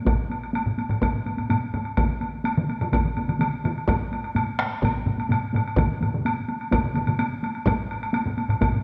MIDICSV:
0, 0, Header, 1, 3, 480
1, 0, Start_track
1, 0, Tempo, 474684
1, 72, Time_signature, 4, 2, 24, 8
1, 8933, End_track
2, 0, Start_track
2, 0, Title_t, "Taiko and cinematic ensemble drums"
2, 50, Note_on_c, 9, 48, 50
2, 65, Note_on_c, 9, 41, 87
2, 73, Note_on_c, 9, 45, 81
2, 151, Note_off_c, 9, 48, 0
2, 167, Note_off_c, 9, 41, 0
2, 172, Note_on_c, 9, 48, 17
2, 174, Note_off_c, 9, 45, 0
2, 274, Note_off_c, 9, 48, 0
2, 300, Note_on_c, 9, 48, 37
2, 401, Note_off_c, 9, 48, 0
2, 425, Note_on_c, 9, 48, 17
2, 526, Note_off_c, 9, 48, 0
2, 537, Note_on_c, 9, 48, 60
2, 638, Note_off_c, 9, 48, 0
2, 667, Note_on_c, 9, 48, 20
2, 670, Note_on_c, 9, 45, 81
2, 768, Note_off_c, 9, 48, 0
2, 771, Note_off_c, 9, 45, 0
2, 787, Note_on_c, 9, 48, 48
2, 888, Note_off_c, 9, 48, 0
2, 906, Note_on_c, 9, 48, 19
2, 907, Note_on_c, 9, 45, 85
2, 1007, Note_off_c, 9, 48, 0
2, 1009, Note_off_c, 9, 45, 0
2, 1027, Note_on_c, 9, 48, 57
2, 1029, Note_on_c, 9, 41, 80
2, 1030, Note_on_c, 9, 45, 64
2, 1128, Note_off_c, 9, 48, 0
2, 1130, Note_off_c, 9, 41, 0
2, 1131, Note_off_c, 9, 45, 0
2, 1152, Note_on_c, 9, 48, 17
2, 1155, Note_on_c, 9, 45, 65
2, 1253, Note_off_c, 9, 48, 0
2, 1256, Note_off_c, 9, 45, 0
2, 1271, Note_on_c, 9, 48, 45
2, 1276, Note_on_c, 9, 45, 60
2, 1372, Note_off_c, 9, 48, 0
2, 1377, Note_off_c, 9, 45, 0
2, 1389, Note_on_c, 9, 48, 41
2, 1396, Note_on_c, 9, 45, 57
2, 1490, Note_off_c, 9, 48, 0
2, 1498, Note_off_c, 9, 45, 0
2, 1514, Note_on_c, 9, 48, 61
2, 1519, Note_on_c, 9, 45, 87
2, 1615, Note_off_c, 9, 48, 0
2, 1620, Note_off_c, 9, 45, 0
2, 1638, Note_on_c, 9, 48, 21
2, 1739, Note_off_c, 9, 48, 0
2, 1755, Note_on_c, 9, 45, 84
2, 1757, Note_on_c, 9, 48, 51
2, 1856, Note_off_c, 9, 45, 0
2, 1858, Note_off_c, 9, 48, 0
2, 1880, Note_on_c, 9, 48, 19
2, 1981, Note_off_c, 9, 48, 0
2, 1994, Note_on_c, 9, 41, 91
2, 1994, Note_on_c, 9, 48, 65
2, 2007, Note_on_c, 9, 47, 85
2, 2095, Note_off_c, 9, 41, 0
2, 2096, Note_off_c, 9, 48, 0
2, 2108, Note_off_c, 9, 47, 0
2, 2116, Note_on_c, 9, 48, 22
2, 2217, Note_off_c, 9, 48, 0
2, 2228, Note_on_c, 9, 48, 42
2, 2329, Note_off_c, 9, 48, 0
2, 2352, Note_on_c, 9, 48, 19
2, 2453, Note_off_c, 9, 48, 0
2, 2468, Note_on_c, 9, 48, 61
2, 2569, Note_off_c, 9, 48, 0
2, 2600, Note_on_c, 9, 48, 22
2, 2602, Note_on_c, 9, 47, 88
2, 2701, Note_off_c, 9, 48, 0
2, 2703, Note_off_c, 9, 47, 0
2, 2719, Note_on_c, 9, 48, 47
2, 2820, Note_off_c, 9, 48, 0
2, 2841, Note_on_c, 9, 47, 86
2, 2851, Note_on_c, 9, 48, 19
2, 2942, Note_off_c, 9, 47, 0
2, 2952, Note_off_c, 9, 48, 0
2, 2954, Note_on_c, 9, 47, 59
2, 2960, Note_on_c, 9, 41, 82
2, 2961, Note_on_c, 9, 48, 58
2, 3056, Note_off_c, 9, 47, 0
2, 3061, Note_off_c, 9, 41, 0
2, 3062, Note_off_c, 9, 48, 0
2, 3079, Note_on_c, 9, 47, 61
2, 3083, Note_on_c, 9, 48, 18
2, 3180, Note_off_c, 9, 47, 0
2, 3184, Note_off_c, 9, 48, 0
2, 3203, Note_on_c, 9, 48, 44
2, 3209, Note_on_c, 9, 47, 62
2, 3305, Note_off_c, 9, 48, 0
2, 3310, Note_off_c, 9, 47, 0
2, 3314, Note_on_c, 9, 48, 38
2, 3326, Note_on_c, 9, 47, 69
2, 3416, Note_off_c, 9, 48, 0
2, 3427, Note_off_c, 9, 47, 0
2, 3430, Note_on_c, 9, 48, 57
2, 3445, Note_on_c, 9, 47, 82
2, 3531, Note_off_c, 9, 48, 0
2, 3546, Note_off_c, 9, 47, 0
2, 3558, Note_on_c, 9, 48, 18
2, 3659, Note_off_c, 9, 48, 0
2, 3681, Note_on_c, 9, 48, 45
2, 3690, Note_on_c, 9, 47, 88
2, 3782, Note_off_c, 9, 48, 0
2, 3791, Note_off_c, 9, 47, 0
2, 3916, Note_on_c, 9, 45, 87
2, 3919, Note_on_c, 9, 41, 98
2, 3919, Note_on_c, 9, 48, 52
2, 4017, Note_off_c, 9, 45, 0
2, 4020, Note_off_c, 9, 41, 0
2, 4021, Note_off_c, 9, 48, 0
2, 4047, Note_on_c, 9, 48, 16
2, 4148, Note_off_c, 9, 48, 0
2, 4160, Note_on_c, 9, 48, 38
2, 4261, Note_off_c, 9, 48, 0
2, 4283, Note_on_c, 9, 48, 17
2, 4384, Note_off_c, 9, 48, 0
2, 4398, Note_on_c, 9, 48, 58
2, 4405, Note_on_c, 9, 45, 83
2, 4499, Note_off_c, 9, 48, 0
2, 4506, Note_off_c, 9, 45, 0
2, 4517, Note_on_c, 9, 48, 19
2, 4618, Note_off_c, 9, 48, 0
2, 4636, Note_on_c, 9, 48, 44
2, 4645, Note_on_c, 9, 37, 71
2, 4737, Note_off_c, 9, 48, 0
2, 4746, Note_off_c, 9, 37, 0
2, 4756, Note_on_c, 9, 48, 19
2, 4857, Note_off_c, 9, 48, 0
2, 4873, Note_on_c, 9, 41, 84
2, 4879, Note_on_c, 9, 45, 95
2, 4880, Note_on_c, 9, 48, 63
2, 4974, Note_off_c, 9, 41, 0
2, 4980, Note_off_c, 9, 45, 0
2, 4981, Note_off_c, 9, 48, 0
2, 5000, Note_on_c, 9, 48, 17
2, 5101, Note_off_c, 9, 48, 0
2, 5115, Note_on_c, 9, 48, 42
2, 5122, Note_on_c, 9, 45, 91
2, 5216, Note_off_c, 9, 48, 0
2, 5223, Note_off_c, 9, 45, 0
2, 5240, Note_on_c, 9, 48, 42
2, 5341, Note_off_c, 9, 48, 0
2, 5352, Note_on_c, 9, 48, 55
2, 5362, Note_on_c, 9, 45, 96
2, 5453, Note_off_c, 9, 48, 0
2, 5463, Note_off_c, 9, 45, 0
2, 5479, Note_on_c, 9, 48, 21
2, 5580, Note_off_c, 9, 48, 0
2, 5590, Note_on_c, 9, 48, 50
2, 5602, Note_on_c, 9, 45, 89
2, 5691, Note_off_c, 9, 48, 0
2, 5703, Note_off_c, 9, 45, 0
2, 5717, Note_on_c, 9, 48, 20
2, 5818, Note_off_c, 9, 48, 0
2, 5828, Note_on_c, 9, 41, 99
2, 5836, Note_on_c, 9, 48, 65
2, 5842, Note_on_c, 9, 45, 84
2, 5851, Note_on_c, 9, 47, 87
2, 5929, Note_off_c, 9, 41, 0
2, 5937, Note_off_c, 9, 48, 0
2, 5943, Note_off_c, 9, 45, 0
2, 5950, Note_on_c, 9, 48, 19
2, 5952, Note_off_c, 9, 47, 0
2, 6051, Note_off_c, 9, 48, 0
2, 6072, Note_on_c, 9, 48, 47
2, 6079, Note_on_c, 9, 45, 66
2, 6093, Note_on_c, 9, 47, 60
2, 6173, Note_off_c, 9, 48, 0
2, 6181, Note_off_c, 9, 45, 0
2, 6194, Note_off_c, 9, 47, 0
2, 6204, Note_on_c, 9, 48, 17
2, 6205, Note_on_c, 9, 45, 68
2, 6211, Note_on_c, 9, 47, 67
2, 6305, Note_off_c, 9, 48, 0
2, 6306, Note_off_c, 9, 45, 0
2, 6312, Note_off_c, 9, 47, 0
2, 6322, Note_on_c, 9, 48, 61
2, 6423, Note_off_c, 9, 48, 0
2, 6441, Note_on_c, 9, 48, 22
2, 6543, Note_off_c, 9, 48, 0
2, 6556, Note_on_c, 9, 48, 53
2, 6657, Note_off_c, 9, 48, 0
2, 6680, Note_on_c, 9, 48, 21
2, 6781, Note_off_c, 9, 48, 0
2, 6790, Note_on_c, 9, 48, 66
2, 6801, Note_on_c, 9, 41, 88
2, 6802, Note_on_c, 9, 47, 64
2, 6803, Note_on_c, 9, 45, 64
2, 6891, Note_off_c, 9, 48, 0
2, 6902, Note_off_c, 9, 41, 0
2, 6904, Note_off_c, 9, 45, 0
2, 6904, Note_off_c, 9, 47, 0
2, 6909, Note_on_c, 9, 48, 19
2, 6917, Note_on_c, 9, 45, 62
2, 6934, Note_on_c, 9, 47, 65
2, 7010, Note_off_c, 9, 48, 0
2, 7018, Note_off_c, 9, 45, 0
2, 7023, Note_on_c, 9, 48, 52
2, 7035, Note_off_c, 9, 47, 0
2, 7039, Note_on_c, 9, 45, 59
2, 7044, Note_on_c, 9, 47, 62
2, 7124, Note_off_c, 9, 48, 0
2, 7140, Note_off_c, 9, 45, 0
2, 7145, Note_off_c, 9, 47, 0
2, 7150, Note_on_c, 9, 48, 41
2, 7159, Note_on_c, 9, 45, 61
2, 7163, Note_on_c, 9, 47, 68
2, 7251, Note_off_c, 9, 48, 0
2, 7260, Note_off_c, 9, 45, 0
2, 7264, Note_off_c, 9, 47, 0
2, 7273, Note_on_c, 9, 48, 64
2, 7374, Note_off_c, 9, 48, 0
2, 7402, Note_on_c, 9, 48, 22
2, 7504, Note_off_c, 9, 48, 0
2, 7513, Note_on_c, 9, 48, 52
2, 7614, Note_off_c, 9, 48, 0
2, 7634, Note_on_c, 9, 48, 21
2, 7735, Note_off_c, 9, 48, 0
2, 7744, Note_on_c, 9, 41, 102
2, 7755, Note_on_c, 9, 45, 92
2, 7755, Note_on_c, 9, 48, 63
2, 7845, Note_off_c, 9, 41, 0
2, 7856, Note_off_c, 9, 48, 0
2, 7857, Note_off_c, 9, 45, 0
2, 7873, Note_on_c, 9, 48, 22
2, 7974, Note_off_c, 9, 48, 0
2, 8105, Note_on_c, 9, 48, 21
2, 8206, Note_off_c, 9, 48, 0
2, 8222, Note_on_c, 9, 48, 70
2, 8323, Note_off_c, 9, 48, 0
2, 8347, Note_on_c, 9, 48, 25
2, 8350, Note_on_c, 9, 45, 92
2, 8448, Note_off_c, 9, 48, 0
2, 8451, Note_off_c, 9, 45, 0
2, 8469, Note_on_c, 9, 48, 57
2, 8570, Note_off_c, 9, 48, 0
2, 8587, Note_on_c, 9, 45, 93
2, 8688, Note_off_c, 9, 45, 0
2, 8707, Note_on_c, 9, 48, 67
2, 8708, Note_on_c, 9, 45, 72
2, 8711, Note_on_c, 9, 41, 84
2, 8808, Note_off_c, 9, 48, 0
2, 8809, Note_off_c, 9, 45, 0
2, 8812, Note_off_c, 9, 41, 0
2, 8821, Note_on_c, 9, 45, 63
2, 8826, Note_on_c, 9, 48, 22
2, 8922, Note_off_c, 9, 45, 0
2, 8927, Note_off_c, 9, 48, 0
2, 8933, End_track
3, 0, Start_track
3, 0, Title_t, "Drums"
3, 70, Note_on_c, 9, 76, 44
3, 171, Note_off_c, 9, 76, 0
3, 318, Note_on_c, 9, 76, 34
3, 419, Note_off_c, 9, 76, 0
3, 439, Note_on_c, 9, 76, 34
3, 540, Note_off_c, 9, 76, 0
3, 559, Note_on_c, 9, 76, 46
3, 660, Note_off_c, 9, 76, 0
3, 795, Note_on_c, 9, 76, 35
3, 896, Note_off_c, 9, 76, 0
3, 918, Note_on_c, 9, 76, 35
3, 1019, Note_off_c, 9, 76, 0
3, 1040, Note_on_c, 9, 76, 47
3, 1142, Note_off_c, 9, 76, 0
3, 1279, Note_on_c, 9, 76, 36
3, 1380, Note_off_c, 9, 76, 0
3, 1399, Note_on_c, 9, 76, 33
3, 1500, Note_off_c, 9, 76, 0
3, 1519, Note_on_c, 9, 76, 45
3, 1620, Note_off_c, 9, 76, 0
3, 1759, Note_on_c, 9, 76, 37
3, 1860, Note_off_c, 9, 76, 0
3, 1873, Note_on_c, 9, 76, 33
3, 1974, Note_off_c, 9, 76, 0
3, 1993, Note_on_c, 9, 76, 51
3, 2094, Note_off_c, 9, 76, 0
3, 2236, Note_on_c, 9, 76, 38
3, 2337, Note_off_c, 9, 76, 0
3, 2478, Note_on_c, 9, 76, 52
3, 2579, Note_off_c, 9, 76, 0
3, 2725, Note_on_c, 9, 76, 35
3, 2826, Note_off_c, 9, 76, 0
3, 2842, Note_on_c, 9, 76, 38
3, 2943, Note_off_c, 9, 76, 0
3, 2963, Note_on_c, 9, 76, 49
3, 3064, Note_off_c, 9, 76, 0
3, 3202, Note_on_c, 9, 76, 38
3, 3303, Note_off_c, 9, 76, 0
3, 3327, Note_on_c, 9, 76, 36
3, 3428, Note_off_c, 9, 76, 0
3, 3447, Note_on_c, 9, 76, 50
3, 3548, Note_off_c, 9, 76, 0
3, 3691, Note_on_c, 9, 76, 38
3, 3793, Note_off_c, 9, 76, 0
3, 3821, Note_on_c, 9, 76, 32
3, 3922, Note_off_c, 9, 76, 0
3, 3931, Note_on_c, 9, 76, 50
3, 4032, Note_off_c, 9, 76, 0
3, 4175, Note_on_c, 9, 76, 35
3, 4276, Note_off_c, 9, 76, 0
3, 4290, Note_on_c, 9, 76, 35
3, 4391, Note_off_c, 9, 76, 0
3, 4412, Note_on_c, 9, 76, 53
3, 4513, Note_off_c, 9, 76, 0
3, 4660, Note_on_c, 9, 76, 37
3, 4762, Note_off_c, 9, 76, 0
3, 4778, Note_on_c, 9, 76, 37
3, 4879, Note_off_c, 9, 76, 0
3, 4901, Note_on_c, 9, 76, 49
3, 5002, Note_off_c, 9, 76, 0
3, 5258, Note_on_c, 9, 76, 38
3, 5359, Note_off_c, 9, 76, 0
3, 5381, Note_on_c, 9, 76, 49
3, 5482, Note_off_c, 9, 76, 0
3, 5625, Note_on_c, 9, 76, 43
3, 5726, Note_off_c, 9, 76, 0
3, 5739, Note_on_c, 9, 76, 34
3, 5840, Note_off_c, 9, 76, 0
3, 5849, Note_on_c, 9, 76, 47
3, 5950, Note_off_c, 9, 76, 0
3, 6094, Note_on_c, 9, 76, 35
3, 6195, Note_off_c, 9, 76, 0
3, 6330, Note_on_c, 9, 76, 57
3, 6431, Note_off_c, 9, 76, 0
3, 6560, Note_on_c, 9, 76, 38
3, 6661, Note_off_c, 9, 76, 0
3, 6685, Note_on_c, 9, 76, 39
3, 6787, Note_off_c, 9, 76, 0
3, 6801, Note_on_c, 9, 76, 52
3, 6902, Note_off_c, 9, 76, 0
3, 7036, Note_on_c, 9, 76, 39
3, 7137, Note_off_c, 9, 76, 0
3, 7154, Note_on_c, 9, 76, 43
3, 7255, Note_off_c, 9, 76, 0
3, 7274, Note_on_c, 9, 76, 59
3, 7375, Note_off_c, 9, 76, 0
3, 7525, Note_on_c, 9, 76, 43
3, 7626, Note_off_c, 9, 76, 0
3, 7636, Note_on_c, 9, 76, 38
3, 7737, Note_off_c, 9, 76, 0
3, 7761, Note_on_c, 9, 76, 56
3, 7862, Note_off_c, 9, 76, 0
3, 8000, Note_on_c, 9, 76, 41
3, 8101, Note_off_c, 9, 76, 0
3, 8121, Note_on_c, 9, 76, 44
3, 8222, Note_off_c, 9, 76, 0
3, 8233, Note_on_c, 9, 76, 59
3, 8334, Note_off_c, 9, 76, 0
3, 8473, Note_on_c, 9, 76, 37
3, 8575, Note_off_c, 9, 76, 0
3, 8597, Note_on_c, 9, 76, 40
3, 8698, Note_off_c, 9, 76, 0
3, 8714, Note_on_c, 9, 76, 50
3, 8815, Note_off_c, 9, 76, 0
3, 8933, End_track
0, 0, End_of_file